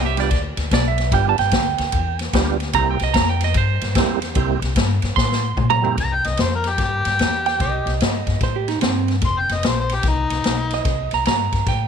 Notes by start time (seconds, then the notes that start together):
Already playing: C2
0.05 G4 E5
0.16 G3 B3 D4 F4 G4 D5, snare, ride
0.31 D2, kick, snare, ride
0.57 D2, snare, ride
0.71 B1 D5, kick, snare, ride
0.88 E5
0.98 snare, ride
1.12 G1 G3 B3 D4 F4 G4 G5, kick, snare, ride
1.29 A5
1.38 G1 G5, snare, ride
1.51 D2, kick, snare, ride
1.78 D2, snare, ride
1.92 E2, kick, ride
2.19 snare, ride
2.33 D2 G3 B3 D4 F4 G4, kick, snare, ride
2.60 snare, ride
2.73 C2 G3 A#3 C4 E4 G4 A#5, kick, ride
2.91 G5
2.99 C2, snare, ride
3.04 D#5
3.14 F2 A#5, kick, snare, ride
3.29 G5
3.41 D#5, snare, ride
3.54 G2 C5, kick, ride
3.81 G2, snare, ride
3.95 E2 G3 A#3 C4 E4 G4, kick, snare, ride
4.22 snare, ride
4.35 C2 G3 A#3 C4 E4 G4, kick, ride
4.62 C2, snare, ride
4.76 G2, kick, snare, ride
5.02 G2, snare, ride
5.16 A2 C6, kick, snare
5.32 snare
5.57 A#2, kick, mid tom
5.70 A#5, mid tom
5.82 G3 A#3 C4 E4 G4, floor tom
5.98 C2 A#5, kick, snare, ride
6.14 G5
6.24 C2 D#5, snare, ride
6.37 F2, snare, ride
6.41 C5
6.55 A#4
6.64 snare, ride
6.69 G4
6.78 G2, kick, snare, ride
6.84 G4
7.05 G2, snare, ride
7.19 E2, snare, ride
7.46 G5, snare, ride
7.60 C2 D#5, kick, snare, ride
7.86 C2, snare, ride
8.00 G2, snare, ride
8.27 G2, kick, snare, ride
8.41 A2 C5, kick, snare, ride
8.56 G4
8.68 D#4, snare, ride
8.81 G2 C4, snare, ride
9.08 snare, ride
9.21 F1, kick, snare, ride
9.26 C6
9.39 G5
9.49 F1, snare, ride
9.54 D#5
9.63 A#1, snare, ride
9.67 C5
9.80 C5
9.89 snare, ride
9.94 G4
10.03 C2, kick, snare, ride
10.08 D#4
10.30 C2, snare, ride
10.44 B1, snare, ride
10.71 D#5, snare, ride
10.85 C2, kick, snare, ride
11.11 C2 A#5, snare, ride
11.25 G2 A#5, snare, ride
11.52 G2, kick, snare, ride
11.66 A2 G5, kick, snare, ride